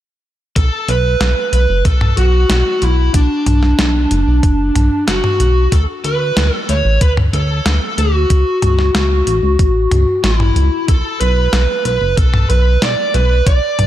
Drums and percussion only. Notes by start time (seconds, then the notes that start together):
0.56 kick, closed hi-hat
0.88 closed hi-hat
1.21 snare, closed hi-hat
1.53 closed hi-hat
1.85 kick, closed hi-hat
2.01 mid tom
2.17 closed hi-hat
2.50 snare, closed hi-hat
2.82 closed hi-hat
3.14 kick, closed hi-hat
3.46 closed hi-hat, mid tom
3.63 snare
3.79 snare, closed hi-hat
4.11 closed hi-hat
4.43 kick, closed hi-hat
4.76 closed hi-hat, mid tom
5.08 snare, closed hi-hat
5.24 mid tom
5.40 closed hi-hat
5.72 kick, closed hi-hat
6.04 closed hi-hat
6.37 snare, closed hi-hat
6.69 closed hi-hat
7.01 kick, closed hi-hat
7.17 mid tom
7.33 closed hi-hat
7.66 snare, closed hi-hat
7.98 closed hi-hat
8.30 kick, closed hi-hat
8.62 closed hi-hat, mid tom
8.79 snare
8.95 snare, closed hi-hat
9.27 closed hi-hat
9.59 kick, closed hi-hat
9.91 closed hi-hat, mid tom
10.24 snare, closed hi-hat
10.40 mid tom
10.56 closed hi-hat
10.88 kick, closed hi-hat
11.21 closed hi-hat
11.53 snare, closed hi-hat
11.85 closed hi-hat
12.17 kick, closed hi-hat
12.34 mid tom
12.50 closed hi-hat
12.82 snare, closed hi-hat
13.14 closed hi-hat
13.47 kick, closed hi-hat
13.79 closed hi-hat, mid tom